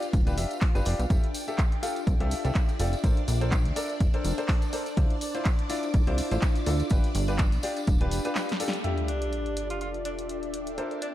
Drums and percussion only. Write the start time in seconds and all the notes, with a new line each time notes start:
0.02 closed hi-hat, tambourine
0.13 kick, closed hi-hat, tambourine
0.27 closed hi-hat, tambourine
0.38 open hi-hat, tambourine
0.51 closed hi-hat, tambourine
0.61 kick, clap, open hi-hat, tambourine
0.75 closed hi-hat, tambourine
0.85 open hi-hat, tambourine
0.99 closed hi-hat, tambourine
1.10 kick, closed hi-hat, tambourine
1.24 closed hi-hat
1.34 open hi-hat, tambourine
1.48 closed hi-hat, tambourine
1.58 kick, clap, closed hi-hat, tambourine
1.72 closed hi-hat
1.83 open hi-hat, tambourine
1.96 closed hi-hat, tambourine
2.07 kick, closed hi-hat, tambourine
2.20 closed hi-hat
2.31 open hi-hat, tambourine
2.45 closed hi-hat, tambourine
2.55 kick, clap, closed hi-hat, tambourine
2.69 closed hi-hat, tambourine
2.80 open hi-hat, tambourine
2.93 closed hi-hat, tambourine
3.04 kick, closed hi-hat, tambourine
3.17 closed hi-hat
3.28 open hi-hat, tambourine
3.41 closed hi-hat, tambourine
3.51 kick, clap, closed hi-hat, tambourine
3.65 closed hi-hat
3.76 open hi-hat, tambourine
3.89 closed hi-hat, tambourine
4.00 kick, closed hi-hat, tambourine
4.14 closed hi-hat
4.24 open hi-hat, tambourine
4.38 closed hi-hat, tambourine
4.48 kick, clap, open hi-hat, tambourine
4.62 closed hi-hat, tambourine
4.73 open hi-hat, tambourine
4.86 closed hi-hat, tambourine
4.97 kick, closed hi-hat, tambourine
5.10 closed hi-hat
5.21 open hi-hat, tambourine
5.34 closed hi-hat, tambourine
5.45 kick, clap, closed hi-hat, tambourine
5.59 closed hi-hat
5.70 open hi-hat, tambourine
5.83 closed hi-hat, tambourine
5.94 kick, closed hi-hat, tambourine
6.07 closed hi-hat
6.18 open hi-hat, tambourine
6.31 closed hi-hat, tambourine
6.42 kick, clap, closed hi-hat, tambourine
6.56 closed hi-hat, tambourine
6.66 open hi-hat, tambourine
6.79 closed hi-hat, tambourine
6.90 kick, closed hi-hat, tambourine
7.04 closed hi-hat, tambourine
7.15 open hi-hat, tambourine
7.28 closed hi-hat, tambourine
7.38 kick, clap, closed hi-hat, tambourine
7.52 closed hi-hat, tambourine
7.63 open hi-hat, tambourine
7.77 closed hi-hat, tambourine
7.87 kick, closed hi-hat, tambourine
8.01 closed hi-hat
8.11 open hi-hat, tambourine
8.25 closed hi-hat, tambourine
8.35 snare, clap, open hi-hat, tambourine
8.49 snare, closed hi-hat, tambourine
8.60 open hi-hat, tambourine
8.68 snare
8.73 closed hi-hat, tambourine
8.84 closed hi-hat
8.98 closed hi-hat
9.08 closed hi-hat
9.22 closed hi-hat
9.33 closed hi-hat
9.46 closed hi-hat
9.57 closed hi-hat
9.70 closed hi-hat
9.81 closed hi-hat
9.94 closed hi-hat
10.05 closed hi-hat
10.19 closed hi-hat
10.29 closed hi-hat
10.43 closed hi-hat
10.54 closed hi-hat
10.67 closed hi-hat
10.78 closed hi-hat
10.91 closed hi-hat
11.02 closed hi-hat